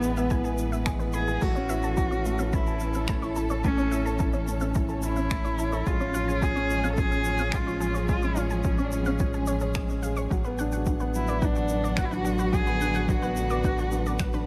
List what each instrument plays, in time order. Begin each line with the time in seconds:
Already playing: analog synth bass A1, string section E3 B3 G#4 B4, felt piano G#3 B3 E4 G#4 G#5, cello B3
0.03 felt piano G#3, shaker
0.17 felt piano B3, synth arpeggio sound E5, shaker
0.30 felt piano E4, synth arpeggio sound G#5, kick, shaker
0.44 synth arpeggio sound G#4, felt piano G#5, shaker
0.58 felt piano E4, shaker
0.72 felt piano B3, synth arpeggio sound E5, shaker
0.86 felt piano G#3, synth arpeggio sound G#4, finger snap, kick, shaker
0.99 felt piano B3, synth arpeggio sound B4, shaker
1.13 felt piano E4, cello G#4, synth arpeggio sound B5, shaker
1.28 synth arpeggio sound G#4, felt piano G#4, shaker
1.41 analog synth bass A1, felt piano A3, cello F#4, synth arpeggio sound A4, kick, crash, shaker
1.55 felt piano C#4, synth arpeggio sound C#5, shaker
1.69 felt piano E4, synth arpeggio sound E5, shaker
1.83 felt piano A4, synth arpeggio sound A5, shaker
1.97 felt piano E4, synth arpeggio sound A4, kick, shaker
2.01 string section C#4
2.11 felt piano C#4, synth arpeggio sound C#5, shaker
2.22 felt piano A3, string section A4, shaker
2.39 felt piano C#4, synth arpeggio sound E5, shaker
2.53 felt piano E4, cello E4, synth arpeggio sound A5, kick, shaker
2.67 synth arpeggio sound A4, felt piano A5, shaker
2.80 felt piano E4, shaker
2.94 felt piano C#4, synth arpeggio sound E5, shaker
3.08 felt piano A3, synth arpeggio sound A5, finger snap, kick, shaker
3.22 felt piano E4, synth arpeggio sound C#5, string section C#5, shaker
3.36 felt piano E4, synth arpeggio sound A4, shaker
3.50 felt piano A4, synth arpeggio sound C#5, shaker
3.64 felt piano A3, cello C#4, synth arpeggio sound A4, kick, shaker
3.78 felt piano C#4, synth arpeggio sound C#5, shaker
3.91 felt piano E4, synth arpeggio sound E5, shaker
4.06 felt piano A4, synth arpeggio sound A5, shaker
4.19 felt piano E4, synth arpeggio sound A4, kick, shaker
4.33 felt piano C#4, synth arpeggio sound C#5, shaker
4.48 felt piano A3, shaker
4.60 felt piano C#4, synth arpeggio sound E5, shaker
4.74 felt piano E4, synth arpeggio sound A5, kick, shaker
4.89 synth arpeggio sound A4, felt piano A5, shaker
5.02 felt piano E4, cello E4, shaker
5.16 felt piano C#4, synth arpeggio sound E5, shaker
5.31 felt piano A3, synth arpeggio sound A5, finger snap, kick, shaker
5.45 felt piano E4, synth arpeggio sound C#5, shaker
5.59 felt piano E4, synth arpeggio sound A4, shaker
5.72 felt piano A4, synth arpeggio sound C#5, shaker
5.86 analog synth bass A1, string section F3, felt piano G#3, cello F4, synth arpeggio sound G#4, kick, shaker
6.00 felt piano C#4, synth arpeggio sound C#5, shaker
6.14 felt piano F4, synth arpeggio sound F5, shaker
6.28 felt piano G#4, synth arpeggio sound G#5, shaker
6.34 string section G#4
6.42 felt piano F4, synth arpeggio sound G#4, cello G#4, kick, shaker
6.55 felt piano C#4, synth arpeggio sound C#5, shaker
6.70 felt piano G#3, shaker
6.84 felt piano C#4, synth arpeggio sound F5, shaker
6.92 cello A4
6.97 felt piano F4, cello G#4, synth arpeggio sound G#5, kick, shaker
7.11 synth arpeggio sound G#4, felt piano G#5, shaker
7.24 felt piano F4, shaker
7.38 felt piano C#4, synth arpeggio sound F5, shaker
7.52 felt piano G#3, cello F4, synth arpeggio sound G#5, finger snap, kick, shaker
7.67 felt piano F4, synth arpeggio sound C#5, shaker
7.80 felt piano F4, synth arpeggio sound G#4, shaker
7.94 felt piano G#4, synth arpeggio sound C#5, shaker
8.08 felt piano G#3, cello F4, synth arpeggio sound G#4, kick, shaker
8.22 felt piano C#4, synth arpeggio sound C#5, shaker
8.36 cello C#4, felt piano F4, synth arpeggio sound F5, shaker
8.50 felt piano G#4, synth arpeggio sound G#5, shaker
8.64 felt piano F4, synth arpeggio sound G#4, kick, shaker
8.78 felt piano C#4, synth arpeggio sound C#5, shaker
8.84 cello D4
8.92 felt piano G#3, cello C#4, shaker
9.03 cello B3, synth arpeggio sound F5, shaker
9.07 felt piano C#4, cello C#4
9.19 felt piano F4, synth arpeggio sound G#5, kick, shaker
9.33 synth arpeggio sound G#4, felt piano G#5, shaker
9.46 synth arpeggio sound C#5, felt piano G#5, shaker
9.60 synth arpeggio sound G#4, felt piano C#5, shaker
9.74 felt piano G#3, synth arpeggio sound G#4, finger snap, kick, shaker
9.89 felt piano C#4, shaker
10.03 felt piano G#4, synth arpeggio sound F5, shaker
10.16 felt piano C#5, synth arpeggio sound C#6, shaker
10.30 analog synth bass A1, string section F#3, felt piano F#3, synth arpeggio sound F#4, kick, shaker
10.44 felt piano B3, synth arpeggio sound B4, shaker
10.58 felt piano D4, synth arpeggio sound F#5, shaker
10.72 felt piano F#4, synth arpeggio sound F#5, shaker
10.78 string section F#5
10.85 string section D3, felt piano D4, synth arpeggio sound F#4, kick, shaker
11.00 felt piano B3, synth arpeggio sound B4, shaker
11.14 felt piano F#3, cello E4, shaker
11.27 felt piano B3, string section B4, synth arpeggio sound D5, shaker
11.42 felt piano D4, cello D4, synth arpeggio sound F#5, kick, shaker
11.56 synth arpeggio sound F#4, felt piano F#5, shaker
11.69 felt piano D4, shaker
11.84 felt piano B3, synth arpeggio sound D5, shaker
11.97 felt piano F#3, cello F#4, synth arpeggio sound F#5, finger snap, kick, shaker
12.05 cello E4
12.11 felt piano D4, cello F#4, synth arpeggio sound B4, shaker
12.25 felt piano D4, synth arpeggio sound F#4, shaker
12.38 felt piano F#4, synth arpeggio sound B4, shaker
12.53 felt piano F#3, synth arpeggio sound F#4, cello G#4, kick, shaker
12.66 felt piano B3, synth arpeggio sound B4, shaker
12.81 felt piano D4, synth arpeggio sound F#5, shaker
12.94 felt piano F#4, synth arpeggio sound F#5, shaker
13.09 felt piano D4, synth arpeggio sound F#4, cello F#4, kick, shaker
13.22 felt piano B3, synth arpeggio sound B4, shaker
13.36 felt piano F#3, shaker
13.50 felt piano B3, synth arpeggio sound D5, shaker
13.64 felt piano D4, synth arpeggio sound F#5, kick, shaker
13.78 synth arpeggio sound F#4, felt piano F#5, shaker
13.92 felt piano D4, shaker
14.06 felt piano B3, synth arpeggio sound D5, shaker
14.19 felt piano F#3, synth arpeggio sound F#5, finger snap, kick, shaker
14.33 felt piano D4, synth arpeggio sound B4, shaker